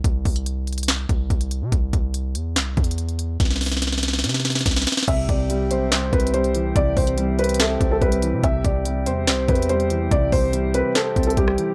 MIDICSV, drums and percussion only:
0, 0, Header, 1, 2, 480
1, 0, Start_track
1, 0, Key_signature, 0, "major"
1, 0, Tempo, 419580
1, 50, Time_signature, 4, 2, 24, 8
1, 13436, End_track
2, 0, Start_track
2, 0, Title_t, "Drums"
2, 50, Note_on_c, 9, 36, 111
2, 50, Note_on_c, 9, 42, 80
2, 164, Note_off_c, 9, 36, 0
2, 165, Note_off_c, 9, 42, 0
2, 290, Note_on_c, 9, 42, 43
2, 291, Note_on_c, 9, 36, 83
2, 291, Note_on_c, 9, 46, 74
2, 405, Note_off_c, 9, 42, 0
2, 405, Note_off_c, 9, 46, 0
2, 406, Note_off_c, 9, 36, 0
2, 410, Note_on_c, 9, 42, 71
2, 524, Note_off_c, 9, 42, 0
2, 530, Note_on_c, 9, 42, 90
2, 644, Note_off_c, 9, 42, 0
2, 770, Note_on_c, 9, 42, 55
2, 830, Note_off_c, 9, 42, 0
2, 830, Note_on_c, 9, 42, 66
2, 890, Note_off_c, 9, 42, 0
2, 890, Note_on_c, 9, 42, 78
2, 950, Note_off_c, 9, 42, 0
2, 950, Note_on_c, 9, 42, 94
2, 1010, Note_on_c, 9, 38, 116
2, 1011, Note_off_c, 9, 42, 0
2, 1011, Note_on_c, 9, 42, 74
2, 1023, Note_on_c, 9, 39, 92
2, 1124, Note_off_c, 9, 38, 0
2, 1125, Note_off_c, 9, 42, 0
2, 1137, Note_off_c, 9, 39, 0
2, 1251, Note_on_c, 9, 36, 94
2, 1251, Note_on_c, 9, 42, 72
2, 1365, Note_off_c, 9, 36, 0
2, 1365, Note_off_c, 9, 42, 0
2, 1490, Note_on_c, 9, 36, 92
2, 1490, Note_on_c, 9, 42, 46
2, 1604, Note_off_c, 9, 36, 0
2, 1605, Note_off_c, 9, 42, 0
2, 1610, Note_on_c, 9, 42, 74
2, 1725, Note_off_c, 9, 42, 0
2, 1729, Note_on_c, 9, 42, 76
2, 1844, Note_off_c, 9, 42, 0
2, 1970, Note_on_c, 9, 36, 112
2, 1971, Note_on_c, 9, 42, 83
2, 2085, Note_off_c, 9, 36, 0
2, 2085, Note_off_c, 9, 42, 0
2, 2211, Note_on_c, 9, 36, 89
2, 2211, Note_on_c, 9, 42, 72
2, 2325, Note_off_c, 9, 42, 0
2, 2326, Note_off_c, 9, 36, 0
2, 2449, Note_on_c, 9, 42, 90
2, 2564, Note_off_c, 9, 42, 0
2, 2689, Note_on_c, 9, 42, 89
2, 2803, Note_off_c, 9, 42, 0
2, 2930, Note_on_c, 9, 38, 119
2, 2931, Note_on_c, 9, 42, 74
2, 2943, Note_on_c, 9, 39, 96
2, 3045, Note_off_c, 9, 38, 0
2, 3045, Note_off_c, 9, 42, 0
2, 3057, Note_off_c, 9, 39, 0
2, 3170, Note_on_c, 9, 42, 45
2, 3171, Note_on_c, 9, 36, 95
2, 3250, Note_off_c, 9, 42, 0
2, 3250, Note_on_c, 9, 42, 62
2, 3285, Note_off_c, 9, 36, 0
2, 3330, Note_off_c, 9, 42, 0
2, 3330, Note_on_c, 9, 42, 75
2, 3410, Note_off_c, 9, 42, 0
2, 3410, Note_on_c, 9, 42, 72
2, 3525, Note_off_c, 9, 42, 0
2, 3530, Note_on_c, 9, 42, 42
2, 3645, Note_off_c, 9, 42, 0
2, 3648, Note_on_c, 9, 42, 76
2, 3763, Note_off_c, 9, 42, 0
2, 3889, Note_on_c, 9, 38, 58
2, 3889, Note_on_c, 9, 42, 85
2, 3890, Note_on_c, 9, 36, 115
2, 3950, Note_off_c, 9, 38, 0
2, 3950, Note_on_c, 9, 38, 50
2, 4004, Note_off_c, 9, 36, 0
2, 4004, Note_off_c, 9, 42, 0
2, 4010, Note_off_c, 9, 38, 0
2, 4010, Note_on_c, 9, 38, 66
2, 4069, Note_off_c, 9, 38, 0
2, 4069, Note_on_c, 9, 38, 56
2, 4129, Note_off_c, 9, 38, 0
2, 4129, Note_on_c, 9, 38, 64
2, 4130, Note_on_c, 9, 46, 75
2, 4190, Note_off_c, 9, 38, 0
2, 4190, Note_on_c, 9, 38, 57
2, 4244, Note_off_c, 9, 46, 0
2, 4250, Note_off_c, 9, 38, 0
2, 4250, Note_on_c, 9, 38, 65
2, 4310, Note_off_c, 9, 38, 0
2, 4310, Note_on_c, 9, 38, 58
2, 4369, Note_off_c, 9, 38, 0
2, 4369, Note_on_c, 9, 38, 70
2, 4369, Note_on_c, 9, 42, 92
2, 4430, Note_off_c, 9, 38, 0
2, 4430, Note_on_c, 9, 38, 62
2, 4483, Note_off_c, 9, 42, 0
2, 4490, Note_off_c, 9, 38, 0
2, 4490, Note_on_c, 9, 38, 76
2, 4550, Note_off_c, 9, 38, 0
2, 4550, Note_on_c, 9, 38, 68
2, 4608, Note_on_c, 9, 42, 87
2, 4610, Note_off_c, 9, 38, 0
2, 4610, Note_on_c, 9, 38, 82
2, 4669, Note_off_c, 9, 38, 0
2, 4669, Note_on_c, 9, 38, 72
2, 4723, Note_off_c, 9, 42, 0
2, 4729, Note_off_c, 9, 38, 0
2, 4729, Note_on_c, 9, 38, 84
2, 4790, Note_off_c, 9, 38, 0
2, 4790, Note_on_c, 9, 38, 73
2, 4850, Note_off_c, 9, 38, 0
2, 4850, Note_on_c, 9, 38, 82
2, 4850, Note_on_c, 9, 42, 71
2, 4910, Note_off_c, 9, 38, 0
2, 4910, Note_on_c, 9, 38, 70
2, 4965, Note_off_c, 9, 42, 0
2, 4969, Note_off_c, 9, 38, 0
2, 4969, Note_on_c, 9, 38, 84
2, 5029, Note_off_c, 9, 38, 0
2, 5029, Note_on_c, 9, 38, 71
2, 5090, Note_off_c, 9, 38, 0
2, 5090, Note_on_c, 9, 38, 95
2, 5090, Note_on_c, 9, 42, 45
2, 5150, Note_off_c, 9, 38, 0
2, 5150, Note_on_c, 9, 38, 79
2, 5170, Note_off_c, 9, 42, 0
2, 5170, Note_on_c, 9, 42, 60
2, 5210, Note_off_c, 9, 38, 0
2, 5210, Note_on_c, 9, 38, 94
2, 5250, Note_off_c, 9, 42, 0
2, 5250, Note_on_c, 9, 42, 75
2, 5269, Note_off_c, 9, 38, 0
2, 5269, Note_on_c, 9, 38, 78
2, 5329, Note_off_c, 9, 42, 0
2, 5329, Note_on_c, 9, 36, 95
2, 5329, Note_on_c, 9, 42, 74
2, 5330, Note_off_c, 9, 38, 0
2, 5330, Note_on_c, 9, 38, 96
2, 5390, Note_off_c, 9, 38, 0
2, 5390, Note_on_c, 9, 38, 82
2, 5443, Note_off_c, 9, 42, 0
2, 5444, Note_off_c, 9, 36, 0
2, 5450, Note_off_c, 9, 38, 0
2, 5450, Note_on_c, 9, 38, 98
2, 5510, Note_off_c, 9, 38, 0
2, 5510, Note_on_c, 9, 38, 87
2, 5569, Note_on_c, 9, 42, 73
2, 5570, Note_off_c, 9, 38, 0
2, 5570, Note_on_c, 9, 38, 105
2, 5630, Note_off_c, 9, 38, 0
2, 5630, Note_on_c, 9, 38, 87
2, 5683, Note_off_c, 9, 42, 0
2, 5690, Note_off_c, 9, 38, 0
2, 5690, Note_on_c, 9, 38, 110
2, 5750, Note_off_c, 9, 38, 0
2, 5750, Note_on_c, 9, 38, 93
2, 5810, Note_on_c, 9, 36, 114
2, 5810, Note_on_c, 9, 42, 85
2, 5810, Note_on_c, 9, 49, 103
2, 5864, Note_off_c, 9, 38, 0
2, 5924, Note_off_c, 9, 36, 0
2, 5924, Note_off_c, 9, 42, 0
2, 5924, Note_off_c, 9, 49, 0
2, 6050, Note_on_c, 9, 42, 71
2, 6051, Note_on_c, 9, 36, 86
2, 6165, Note_off_c, 9, 36, 0
2, 6165, Note_off_c, 9, 42, 0
2, 6290, Note_on_c, 9, 42, 94
2, 6404, Note_off_c, 9, 42, 0
2, 6529, Note_on_c, 9, 42, 90
2, 6643, Note_off_c, 9, 42, 0
2, 6770, Note_on_c, 9, 38, 119
2, 6771, Note_on_c, 9, 42, 74
2, 6782, Note_on_c, 9, 39, 97
2, 6884, Note_off_c, 9, 38, 0
2, 6885, Note_off_c, 9, 42, 0
2, 6897, Note_off_c, 9, 39, 0
2, 7010, Note_on_c, 9, 42, 47
2, 7011, Note_on_c, 9, 36, 98
2, 7090, Note_off_c, 9, 42, 0
2, 7090, Note_on_c, 9, 42, 62
2, 7125, Note_off_c, 9, 36, 0
2, 7170, Note_off_c, 9, 42, 0
2, 7170, Note_on_c, 9, 42, 77
2, 7250, Note_off_c, 9, 42, 0
2, 7250, Note_on_c, 9, 42, 74
2, 7365, Note_off_c, 9, 42, 0
2, 7370, Note_on_c, 9, 42, 44
2, 7484, Note_off_c, 9, 42, 0
2, 7488, Note_on_c, 9, 42, 74
2, 7603, Note_off_c, 9, 42, 0
2, 7730, Note_on_c, 9, 36, 113
2, 7730, Note_on_c, 9, 42, 86
2, 7844, Note_off_c, 9, 36, 0
2, 7844, Note_off_c, 9, 42, 0
2, 7970, Note_on_c, 9, 42, 44
2, 7970, Note_on_c, 9, 46, 76
2, 7971, Note_on_c, 9, 36, 88
2, 8084, Note_off_c, 9, 42, 0
2, 8085, Note_off_c, 9, 46, 0
2, 8086, Note_off_c, 9, 36, 0
2, 8090, Note_on_c, 9, 42, 73
2, 8205, Note_off_c, 9, 42, 0
2, 8210, Note_on_c, 9, 42, 93
2, 8324, Note_off_c, 9, 42, 0
2, 8450, Note_on_c, 9, 42, 56
2, 8510, Note_off_c, 9, 42, 0
2, 8510, Note_on_c, 9, 42, 71
2, 8571, Note_off_c, 9, 42, 0
2, 8571, Note_on_c, 9, 42, 82
2, 8630, Note_off_c, 9, 42, 0
2, 8630, Note_on_c, 9, 42, 96
2, 8690, Note_on_c, 9, 38, 122
2, 8691, Note_off_c, 9, 42, 0
2, 8691, Note_on_c, 9, 42, 75
2, 8703, Note_on_c, 9, 39, 97
2, 8805, Note_off_c, 9, 38, 0
2, 8805, Note_off_c, 9, 42, 0
2, 8817, Note_off_c, 9, 39, 0
2, 8931, Note_on_c, 9, 36, 97
2, 8931, Note_on_c, 9, 42, 75
2, 9045, Note_off_c, 9, 36, 0
2, 9046, Note_off_c, 9, 42, 0
2, 9170, Note_on_c, 9, 36, 95
2, 9170, Note_on_c, 9, 42, 45
2, 9284, Note_off_c, 9, 36, 0
2, 9284, Note_off_c, 9, 42, 0
2, 9290, Note_on_c, 9, 42, 79
2, 9404, Note_off_c, 9, 42, 0
2, 9409, Note_on_c, 9, 42, 79
2, 9523, Note_off_c, 9, 42, 0
2, 9650, Note_on_c, 9, 36, 117
2, 9650, Note_on_c, 9, 42, 84
2, 9765, Note_off_c, 9, 36, 0
2, 9765, Note_off_c, 9, 42, 0
2, 9890, Note_on_c, 9, 42, 73
2, 9891, Note_on_c, 9, 36, 89
2, 10005, Note_off_c, 9, 42, 0
2, 10006, Note_off_c, 9, 36, 0
2, 10130, Note_on_c, 9, 42, 93
2, 10244, Note_off_c, 9, 42, 0
2, 10369, Note_on_c, 9, 42, 92
2, 10483, Note_off_c, 9, 42, 0
2, 10610, Note_on_c, 9, 38, 118
2, 10611, Note_on_c, 9, 42, 72
2, 10623, Note_on_c, 9, 39, 97
2, 10725, Note_off_c, 9, 38, 0
2, 10725, Note_off_c, 9, 42, 0
2, 10737, Note_off_c, 9, 39, 0
2, 10850, Note_on_c, 9, 42, 47
2, 10851, Note_on_c, 9, 36, 96
2, 10930, Note_off_c, 9, 42, 0
2, 10930, Note_on_c, 9, 42, 64
2, 10965, Note_off_c, 9, 36, 0
2, 11010, Note_off_c, 9, 42, 0
2, 11010, Note_on_c, 9, 42, 76
2, 11090, Note_off_c, 9, 42, 0
2, 11090, Note_on_c, 9, 42, 74
2, 11204, Note_off_c, 9, 42, 0
2, 11210, Note_on_c, 9, 42, 46
2, 11324, Note_off_c, 9, 42, 0
2, 11328, Note_on_c, 9, 42, 76
2, 11443, Note_off_c, 9, 42, 0
2, 11570, Note_on_c, 9, 36, 115
2, 11570, Note_on_c, 9, 42, 85
2, 11684, Note_off_c, 9, 36, 0
2, 11685, Note_off_c, 9, 42, 0
2, 11810, Note_on_c, 9, 46, 77
2, 11811, Note_on_c, 9, 36, 89
2, 11925, Note_off_c, 9, 46, 0
2, 11926, Note_off_c, 9, 36, 0
2, 12049, Note_on_c, 9, 42, 89
2, 12164, Note_off_c, 9, 42, 0
2, 12289, Note_on_c, 9, 42, 92
2, 12403, Note_off_c, 9, 42, 0
2, 12530, Note_on_c, 9, 38, 117
2, 12530, Note_on_c, 9, 42, 73
2, 12542, Note_on_c, 9, 39, 98
2, 12644, Note_off_c, 9, 38, 0
2, 12645, Note_off_c, 9, 42, 0
2, 12657, Note_off_c, 9, 39, 0
2, 12770, Note_on_c, 9, 42, 46
2, 12771, Note_on_c, 9, 36, 94
2, 12850, Note_off_c, 9, 42, 0
2, 12850, Note_on_c, 9, 42, 64
2, 12885, Note_off_c, 9, 36, 0
2, 12930, Note_off_c, 9, 42, 0
2, 12930, Note_on_c, 9, 42, 78
2, 13009, Note_off_c, 9, 42, 0
2, 13009, Note_on_c, 9, 42, 74
2, 13010, Note_on_c, 9, 36, 101
2, 13124, Note_off_c, 9, 36, 0
2, 13124, Note_off_c, 9, 42, 0
2, 13130, Note_on_c, 9, 37, 101
2, 13244, Note_off_c, 9, 37, 0
2, 13249, Note_on_c, 9, 42, 76
2, 13363, Note_off_c, 9, 42, 0
2, 13436, End_track
0, 0, End_of_file